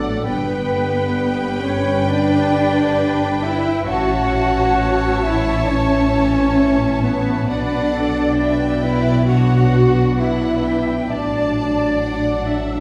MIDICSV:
0, 0, Header, 1, 9, 480
1, 0, Start_track
1, 0, Tempo, 904977
1, 139, Time_signature, 4, 2, 24, 8
1, 6790, End_track
2, 0, Start_track
2, 0, Title_t, "Violin section"
2, 0, Program_c, 0, 48
2, 0, Note_on_c, 0, 78, 84
2, 120, Note_off_c, 0, 78, 0
2, 142, Note_on_c, 0, 79, 85
2, 2030, Note_off_c, 0, 79, 0
2, 2055, Note_on_c, 0, 81, 88
2, 3953, Note_off_c, 0, 81, 0
2, 3976, Note_on_c, 0, 78, 75
2, 4429, Note_off_c, 0, 78, 0
2, 4447, Note_on_c, 0, 79, 72
2, 4922, Note_on_c, 0, 78, 68
2, 4926, Note_off_c, 0, 79, 0
2, 5396, Note_off_c, 0, 78, 0
2, 5403, Note_on_c, 0, 78, 73
2, 5639, Note_off_c, 0, 78, 0
2, 5642, Note_on_c, 0, 79, 69
2, 5884, Note_off_c, 0, 79, 0
2, 5887, Note_on_c, 0, 81, 72
2, 6372, Note_off_c, 0, 81, 0
2, 6376, Note_on_c, 0, 78, 62
2, 6790, Note_off_c, 0, 78, 0
2, 6790, End_track
3, 0, Start_track
3, 0, Title_t, "Clarinet"
3, 0, Program_c, 1, 71
3, 0, Note_on_c, 1, 69, 76
3, 139, Note_on_c, 1, 71, 98
3, 147, Note_off_c, 1, 69, 0
3, 775, Note_off_c, 1, 71, 0
3, 866, Note_on_c, 1, 73, 87
3, 1103, Note_on_c, 1, 74, 102
3, 1111, Note_off_c, 1, 73, 0
3, 1820, Note_on_c, 1, 76, 96
3, 1828, Note_off_c, 1, 74, 0
3, 2057, Note_on_c, 1, 78, 109
3, 2065, Note_off_c, 1, 76, 0
3, 2775, Note_on_c, 1, 76, 94
3, 2783, Note_off_c, 1, 78, 0
3, 3015, Note_on_c, 1, 73, 99
3, 3022, Note_off_c, 1, 76, 0
3, 3729, Note_off_c, 1, 73, 0
3, 3732, Note_on_c, 1, 71, 89
3, 3968, Note_on_c, 1, 74, 100
3, 3976, Note_off_c, 1, 71, 0
3, 4686, Note_on_c, 1, 76, 82
3, 4693, Note_off_c, 1, 74, 0
3, 4928, Note_on_c, 1, 78, 88
3, 4936, Note_off_c, 1, 76, 0
3, 5263, Note_off_c, 1, 78, 0
3, 5400, Note_on_c, 1, 76, 90
3, 5889, Note_on_c, 1, 74, 88
3, 5897, Note_off_c, 1, 76, 0
3, 6790, Note_off_c, 1, 74, 0
3, 6790, End_track
4, 0, Start_track
4, 0, Title_t, "Flute section"
4, 0, Program_c, 2, 73
4, 0, Note_on_c, 2, 69, 81
4, 141, Note_off_c, 2, 69, 0
4, 144, Note_on_c, 2, 71, 107
4, 849, Note_off_c, 2, 71, 0
4, 860, Note_on_c, 2, 73, 89
4, 1100, Note_off_c, 2, 73, 0
4, 1102, Note_on_c, 2, 74, 104
4, 1814, Note_off_c, 2, 74, 0
4, 1817, Note_on_c, 2, 76, 94
4, 2053, Note_off_c, 2, 76, 0
4, 2055, Note_on_c, 2, 78, 112
4, 2640, Note_off_c, 2, 78, 0
4, 2770, Note_on_c, 2, 76, 92
4, 3005, Note_off_c, 2, 76, 0
4, 3009, Note_on_c, 2, 73, 104
4, 3730, Note_off_c, 2, 73, 0
4, 3733, Note_on_c, 2, 71, 86
4, 3971, Note_on_c, 2, 74, 106
4, 3973, Note_off_c, 2, 71, 0
4, 4671, Note_off_c, 2, 74, 0
4, 4682, Note_on_c, 2, 76, 83
4, 4921, Note_on_c, 2, 78, 94
4, 4924, Note_off_c, 2, 76, 0
4, 5405, Note_off_c, 2, 78, 0
4, 5405, Note_on_c, 2, 76, 86
4, 5875, Note_off_c, 2, 76, 0
4, 5889, Note_on_c, 2, 74, 100
4, 6730, Note_off_c, 2, 74, 0
4, 6790, End_track
5, 0, Start_track
5, 0, Title_t, "Violin section"
5, 0, Program_c, 3, 48
5, 0, Note_on_c, 3, 74, 83
5, 121, Note_off_c, 3, 74, 0
5, 140, Note_on_c, 3, 79, 79
5, 2029, Note_off_c, 3, 79, 0
5, 2053, Note_on_c, 3, 76, 79
5, 3952, Note_off_c, 3, 76, 0
5, 3972, Note_on_c, 3, 74, 75
5, 4427, Note_off_c, 3, 74, 0
5, 4449, Note_on_c, 3, 76, 76
5, 4684, Note_on_c, 3, 74, 83
5, 4687, Note_off_c, 3, 76, 0
5, 4925, Note_off_c, 3, 74, 0
5, 4925, Note_on_c, 3, 73, 70
5, 5164, Note_on_c, 3, 71, 69
5, 5167, Note_off_c, 3, 73, 0
5, 5399, Note_off_c, 3, 71, 0
5, 5405, Note_on_c, 3, 71, 78
5, 5875, Note_off_c, 3, 71, 0
5, 5886, Note_on_c, 3, 74, 72
5, 6790, Note_off_c, 3, 74, 0
5, 6790, End_track
6, 0, Start_track
6, 0, Title_t, "Viola section"
6, 0, Program_c, 4, 48
6, 0, Note_on_c, 4, 74, 89
6, 122, Note_off_c, 4, 74, 0
6, 141, Note_on_c, 4, 71, 91
6, 2030, Note_off_c, 4, 71, 0
6, 2047, Note_on_c, 4, 73, 86
6, 3970, Note_off_c, 4, 73, 0
6, 3975, Note_on_c, 4, 71, 81
6, 4196, Note_off_c, 4, 71, 0
6, 4215, Note_on_c, 4, 69, 71
6, 4450, Note_off_c, 4, 69, 0
6, 4451, Note_on_c, 4, 71, 76
6, 4919, Note_off_c, 4, 71, 0
6, 4931, Note_on_c, 4, 62, 77
6, 5870, Note_off_c, 4, 62, 0
6, 5889, Note_on_c, 4, 74, 79
6, 6125, Note_off_c, 4, 74, 0
6, 6134, Note_on_c, 4, 74, 66
6, 6370, Note_off_c, 4, 74, 0
6, 6376, Note_on_c, 4, 74, 67
6, 6617, Note_off_c, 4, 74, 0
6, 6619, Note_on_c, 4, 76, 63
6, 6790, Note_off_c, 4, 76, 0
6, 6790, End_track
7, 0, Start_track
7, 0, Title_t, "Cello section"
7, 0, Program_c, 5, 48
7, 0, Note_on_c, 5, 57, 90
7, 139, Note_off_c, 5, 57, 0
7, 141, Note_on_c, 5, 59, 99
7, 848, Note_off_c, 5, 59, 0
7, 865, Note_on_c, 5, 61, 103
7, 1102, Note_off_c, 5, 61, 0
7, 1104, Note_on_c, 5, 62, 111
7, 1815, Note_off_c, 5, 62, 0
7, 1816, Note_on_c, 5, 64, 104
7, 2052, Note_off_c, 5, 64, 0
7, 2053, Note_on_c, 5, 66, 108
7, 2757, Note_off_c, 5, 66, 0
7, 2777, Note_on_c, 5, 64, 104
7, 3013, Note_off_c, 5, 64, 0
7, 3013, Note_on_c, 5, 61, 110
7, 3732, Note_off_c, 5, 61, 0
7, 3735, Note_on_c, 5, 59, 101
7, 3974, Note_off_c, 5, 59, 0
7, 3974, Note_on_c, 5, 62, 98
7, 4687, Note_off_c, 5, 62, 0
7, 4687, Note_on_c, 5, 64, 102
7, 4922, Note_off_c, 5, 64, 0
7, 4926, Note_on_c, 5, 66, 107
7, 5398, Note_off_c, 5, 66, 0
7, 5413, Note_on_c, 5, 64, 91
7, 5886, Note_on_c, 5, 62, 94
7, 5889, Note_off_c, 5, 64, 0
7, 6790, Note_off_c, 5, 62, 0
7, 6790, End_track
8, 0, Start_track
8, 0, Title_t, "French horn section"
8, 0, Program_c, 6, 60
8, 0, Note_on_c, 6, 54, 87
8, 0, Note_on_c, 6, 62, 86
8, 119, Note_off_c, 6, 54, 0
8, 119, Note_off_c, 6, 62, 0
8, 144, Note_on_c, 6, 50, 81
8, 145, Note_on_c, 6, 55, 87
8, 1956, Note_off_c, 6, 50, 0
8, 1956, Note_off_c, 6, 55, 0
8, 2046, Note_on_c, 6, 61, 86
8, 2047, Note_on_c, 6, 52, 86
8, 3948, Note_off_c, 6, 61, 0
8, 3949, Note_off_c, 6, 52, 0
8, 3964, Note_on_c, 6, 54, 81
8, 3968, Note_on_c, 6, 59, 84
8, 5862, Note_off_c, 6, 54, 0
8, 5863, Note_off_c, 6, 59, 0
8, 5885, Note_on_c, 6, 62, 76
8, 5886, Note_on_c, 6, 54, 77
8, 6790, Note_off_c, 6, 54, 0
8, 6790, Note_off_c, 6, 62, 0
8, 6790, End_track
9, 0, Start_track
9, 0, Title_t, "Double bass section"
9, 0, Program_c, 7, 48
9, 0, Note_on_c, 7, 33, 80
9, 140, Note_on_c, 7, 31, 77
9, 141, Note_off_c, 7, 33, 0
9, 2029, Note_off_c, 7, 31, 0
9, 2050, Note_on_c, 7, 33, 78
9, 3950, Note_off_c, 7, 33, 0
9, 3972, Note_on_c, 7, 35, 77
9, 5865, Note_off_c, 7, 35, 0
9, 5884, Note_on_c, 7, 33, 75
9, 6790, Note_off_c, 7, 33, 0
9, 6790, End_track
0, 0, End_of_file